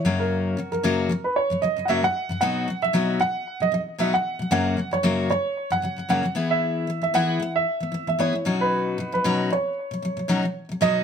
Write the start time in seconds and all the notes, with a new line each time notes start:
Already playing: C#5
0.05 F#2 C#3 F#3 A#3 C#4 F#4
0.19 A#4
0.57 F#2 C#3 F#3
0.72 F#2 C#3 F#3 A#4
0.83 F#2 C#3 F#3 A#3 C#4 F#4
1.09 F#2 C#3 F#3
1.24 B4
1.36 C#5
1.50 F#2 C#3 F#3
1.62 F#2 C#3 F#3 D#5
1.76 F#2 C#3 F#3
1.85 F#2 C#3 F#3 A#3 C#4 E5 F#5
1.90 F#4
2.03 F#2 C#3 F#3 F#5
2.29 F#2 C#3 F#3
2.41 B2 F#3 B3 D#4 F#4 F#5
2.68 B2 F#3
2.82 B2 F#3 E5
2.93 B2 F#3 B3 D#4 F#4
3.20 B2 F#3 F#5
3.60 B2 F#3 D#5
3.72 B2 F#3 D#5
3.98 B2 F#3 B3 D#4 F#4 E5
4.13 B2 F#3 F#5
4.39 B2 F#3
4.51 F#2 C#3 F#3 A#3 C#4 F#4 F#5
4.77 F#2 C#3 F#3
4.91 F#2 C#3 F#3 C#5
5.03 F#2 C#3 F#3 A#3 C#4 F#4
5.30 F#2 C#3 C#5
5.70 F#2 C#3 F#3 F#5
5.82 F#2 C#3 F#3
5.96 F#2 C#3 F#3
6.09 F#2 C#3 F#3 A#3 C#4 F#4 F#5
6.23 F#2 C#3 F#3
6.35 E3 B3 E4 G#4
6.51 E5
6.87 E3 B3
7.02 E3 B3 E5
7.14 E3 B3 E4 G#4 F#5
7.40 E3 B3
7.56 E5
7.80 E3 B3
7.92 E3 B3
8.07 E3 B3 E5
8.19 E3 B3 E4 G#4 C#5
8.33 E3 B3
8.45 B2 F#3 C#4 D#4 F#4
8.61 B4
8.98 B2 F#3
9.12 B2 F#3 B4
9.24 B2 F#3 C#4 D#4 F#4
9.50 B2 F#3 C#5
9.91 B2 F#3
10.02 B2 F#3
10.17 B2 F#3
10.28 B2 F#3 C#4 D#4 F#4
10.43 B2 F#3
10.69 B2 F#3
10.81 B2 F#3 B3 D#4 F#4 D#5